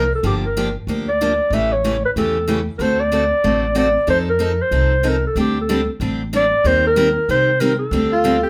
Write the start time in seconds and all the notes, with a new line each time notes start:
Already playing: C2 A#4
0.15 A4
0.23 G1 D3 F3 A#3 D4 G4
0.45 A#4
0.57 D3 F3 A#3 D4 G4
0.87 D2 D3 F3 A#3 D4 G4
1.08 D5
1.21 D3 F3 A#3 D4 G4
1.50 A1 C#3 E3 A3 C#4 G4 E5
1.72 C#5
1.84 C#3 E3 A3 C#4 G4
2.05 B4
2.16 E2 C#3 E3 A3 C#4 G4 A4
2.48 C#3 E3 A3 C#4 G4
2.78 D2 D3 A3 C4 F#4 A4 A#4 C5
3.00 D5
3.12 D3 A3 C4 F#4 A4
3.44 A1 D3 A3 C4 F#4 A4
3.75 D3 A3 C4 F#4 A4 D5
4.07 F2 F3 C4 D#4 A4 C5
4.30 A#4
4.39 F3 C4 D#4 A4
4.62 C5
4.71 C2 F3 C4 D#4 A4
5.03 F3 C4 D#4 A4
5.08 A#4
5.27 A4
5.35 D2 D3 G3 C4 D4 G4
5.40 G4
5.61 A4
5.69 D3 G3 C4 D4 G4
6.00 A1 D3 G3 C4 D4 G4
6.33 D3 G3 C4 D4 G4 D5
6.64 D#2 D#3 G3 C4 G4 A#4 C5
6.87 A#4
6.96 D#3 G3 C4 G4 A#4
7.29 C3 D#3 G3 C4 G4 A#4 C5
7.60 D#3 G3 C4 G4 A#4
7.79 A4
7.91 D2 D3 G3 C4 D4 G4
8.12 F4
8.24 D3 G3 C4 D4 G4
8.43 G4